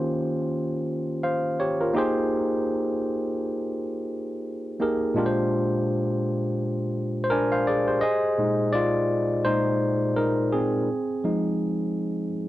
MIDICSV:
0, 0, Header, 1, 2, 480
1, 0, Start_track
1, 0, Tempo, 714286
1, 1547, Time_signature, 4, 2, 24, 8
1, 8391, End_track
2, 0, Start_track
2, 0, Title_t, "Tine electric piano"
2, 0, Program_c, 0, 4
2, 0, Control_c, 0, 64, 127
2, 0, Note_on_c, 0, 51, 74
2, 0, Note_on_c, 0, 58, 69
2, 0, Note_on_c, 0, 61, 74
2, 0, Note_on_c, 0, 65, 74
2, 0, Note_on_c, 0, 67, 75
2, 0, Note_on_c, 0, 72, 87
2, 805, Note_off_c, 0, 65, 0
2, 808, Note_off_c, 0, 67, 0
2, 811, Note_off_c, 0, 72, 0
2, 829, Note_on_c, 0, 77, 61
2, 832, Note_on_c, 0, 72, 55
2, 1056, Note_off_c, 0, 77, 0
2, 1058, Note_off_c, 0, 72, 0
2, 1074, Note_on_c, 0, 73, 73
2, 1079, Note_on_c, 0, 67, 61
2, 1203, Note_off_c, 0, 73, 0
2, 1206, Note_off_c, 0, 67, 0
2, 1215, Note_on_c, 0, 70, 62
2, 1219, Note_on_c, 0, 65, 55
2, 1275, Note_off_c, 0, 51, 0
2, 1279, Note_off_c, 0, 58, 0
2, 1281, Note_off_c, 0, 61, 0
2, 1300, Note_on_c, 0, 58, 78
2, 1308, Note_on_c, 0, 63, 72
2, 1316, Control_c, 0, 64, 0
2, 1318, Note_on_c, 0, 67, 70
2, 1323, Note_on_c, 0, 68, 74
2, 1332, Note_on_c, 0, 72, 78
2, 1427, Control_c, 0, 64, 127
2, 1439, Note_off_c, 0, 70, 0
2, 1441, Note_off_c, 0, 65, 0
2, 3197, Note_off_c, 0, 58, 0
2, 3200, Note_off_c, 0, 63, 0
2, 3206, Note_off_c, 0, 67, 0
2, 3208, Note_off_c, 0, 68, 0
2, 3213, Note_off_c, 0, 72, 0
2, 3224, Note_on_c, 0, 58, 56
2, 3228, Note_on_c, 0, 63, 50
2, 3234, Note_on_c, 0, 67, 55
2, 3236, Note_on_c, 0, 68, 52
2, 3239, Note_on_c, 0, 70, 67
2, 3456, Note_on_c, 0, 46, 71
2, 3466, Note_off_c, 0, 58, 0
2, 3466, Note_on_c, 0, 56, 63
2, 3468, Note_off_c, 0, 63, 0
2, 3470, Note_off_c, 0, 67, 0
2, 3472, Note_off_c, 0, 68, 0
2, 3472, Note_on_c, 0, 62, 72
2, 3473, Note_off_c, 0, 70, 0
2, 3476, Control_c, 0, 64, 0
2, 3478, Note_on_c, 0, 65, 64
2, 3482, Note_on_c, 0, 67, 62
2, 3490, Note_on_c, 0, 70, 59
2, 3529, Note_off_c, 0, 70, 0
2, 3534, Note_on_c, 0, 72, 79
2, 3587, Control_c, 0, 64, 127
2, 4856, Note_off_c, 0, 72, 0
2, 4864, Note_on_c, 0, 72, 74
2, 4888, Note_off_c, 0, 67, 0
2, 4905, Note_off_c, 0, 72, 0
2, 4906, Note_on_c, 0, 70, 91
2, 4912, Note_off_c, 0, 62, 0
2, 4915, Note_on_c, 0, 80, 60
2, 4919, Note_on_c, 0, 74, 52
2, 4920, Note_on_c, 0, 62, 66
2, 5044, Note_off_c, 0, 80, 0
2, 5046, Note_off_c, 0, 74, 0
2, 5052, Note_on_c, 0, 77, 71
2, 5057, Note_on_c, 0, 72, 57
2, 5145, Note_off_c, 0, 77, 0
2, 5147, Note_off_c, 0, 72, 0
2, 5155, Note_on_c, 0, 74, 72
2, 5161, Note_on_c, 0, 68, 62
2, 5284, Note_off_c, 0, 74, 0
2, 5287, Note_off_c, 0, 68, 0
2, 5292, Note_on_c, 0, 72, 59
2, 5294, Note_on_c, 0, 67, 57
2, 5355, Note_off_c, 0, 46, 0
2, 5360, Note_off_c, 0, 56, 0
2, 5366, Note_off_c, 0, 65, 0
2, 5367, Note_off_c, 0, 62, 0
2, 5383, Note_on_c, 0, 75, 92
2, 5397, Control_c, 0, 64, 0
2, 5398, Note_on_c, 0, 68, 74
2, 5401, Note_off_c, 0, 70, 0
2, 5498, Control_c, 0, 64, 127
2, 5518, Note_off_c, 0, 72, 0
2, 5519, Note_off_c, 0, 67, 0
2, 5632, Note_on_c, 0, 46, 48
2, 5635, Note_on_c, 0, 56, 46
2, 5640, Note_on_c, 0, 63, 53
2, 5845, Note_off_c, 0, 68, 0
2, 5864, Note_on_c, 0, 74, 88
2, 5880, Note_off_c, 0, 75, 0
2, 5880, Note_on_c, 0, 65, 68
2, 6319, Note_off_c, 0, 74, 0
2, 6323, Note_off_c, 0, 46, 0
2, 6324, Note_off_c, 0, 56, 0
2, 6327, Note_off_c, 0, 63, 0
2, 6327, Note_off_c, 0, 65, 0
2, 6347, Note_on_c, 0, 72, 87
2, 6353, Note_on_c, 0, 46, 46
2, 6357, Note_on_c, 0, 56, 41
2, 6360, Note_on_c, 0, 63, 68
2, 6566, Note_off_c, 0, 46, 0
2, 6568, Note_off_c, 0, 56, 0
2, 6800, Note_off_c, 0, 72, 0
2, 6808, Note_off_c, 0, 63, 0
2, 6830, Note_on_c, 0, 70, 74
2, 6840, Note_on_c, 0, 63, 60
2, 7057, Note_off_c, 0, 63, 0
2, 7072, Note_on_c, 0, 68, 69
2, 7076, Note_off_c, 0, 70, 0
2, 7082, Note_on_c, 0, 60, 56
2, 7316, Control_c, 0, 64, 0
2, 7425, Control_c, 0, 64, 127
2, 7523, Note_off_c, 0, 68, 0
2, 7528, Note_off_c, 0, 60, 0
2, 7554, Note_on_c, 0, 53, 49
2, 7558, Note_on_c, 0, 56, 51
2, 7560, Note_on_c, 0, 63, 52
2, 8244, Note_off_c, 0, 53, 0
2, 8245, Note_off_c, 0, 56, 0
2, 8247, Note_off_c, 0, 63, 0
2, 8391, End_track
0, 0, End_of_file